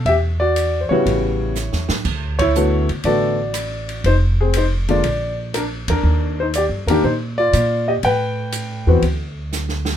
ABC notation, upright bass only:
X:1
M:4/4
L:1/8
Q:"Swing" 1/4=120
K:D
V:1 name="Upright bass" clef=bass
E,,3 z A,,,2- (3A,,, E,, A,, | D,,3 C,, A,,,4 | =F,,,4 _B,,,3 E,, | _E,,2- (3E,, G,, =E,, _B,,2 B,,2 |
A,,3 E,, D,,4 |]